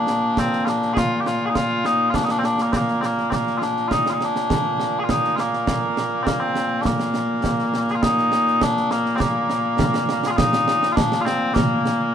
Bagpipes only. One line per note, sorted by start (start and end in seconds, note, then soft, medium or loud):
0.00 12.15 A#2 medium
0.00 2.62 A#3 medium
0.00 0.39 D4 loud
0.39 0.65 C4 loud
0.65 0.93 D4 medium
0.65 0.69 F4 medium
0.93 0.98 G#4 loud
0.98 1.20 F4 loud
1.20 1.27 G4 medium
1.27 1.46 F4 loud
1.46 1.50 G#4 medium
1.50 1.55 D#4 medium
1.55 1.86 F4 loud
1.86 2.10 D#4 loud
2.10 2.15 F4 loud
2.15 2.24 D4 loud
2.24 2.31 D#4 medium
2.31 2.39 D4 loud
2.39 2.45 C4 medium
2.45 2.62 D4 loud
2.62 2.73 A#3 medium
2.73 2.77 C4 medium
2.77 3.01 A#3 medium
3.01 3.06 C4 medium
3.06 3.30 A#3 medium
3.30 3.58 A#3 medium
3.30 3.33 C4 medium
3.58 3.62 F4 medium
3.62 3.88 D4 medium
3.88 3.92 F4 loud
3.92 4.10 D#4 loud
4.10 4.24 D#4 medium
4.10 4.13 F4 medium
4.24 4.99 D4 loud
4.99 5.04 G#4 medium
5.04 5.10 F4 medium
5.10 5.36 D#4 loud
5.36 5.40 F4 medium
5.40 6.23 A#3 medium
6.23 6.40 A#3 medium
6.23 6.27 C4 medium
6.40 6.81 C4 medium
6.81 6.86 D4 medium
6.86 7.91 A#3 medium
7.91 7.95 G#4 medium
7.95 8.03 F4 medium
8.03 8.62 D#4 loud
8.62 8.91 D4 loud
8.91 9.16 A#3 loud
9.16 9.20 C4 medium
9.20 10.27 A#3 medium
10.27 10.37 F4 medium
10.27 10.30 G#4 medium
10.37 10.92 D#4 loud
10.92 11.21 D4 loud
10.92 10.96 F4 loud
11.21 11.25 F4 loud
11.25 11.54 C4 loud
11.54 12.15 A#3 medium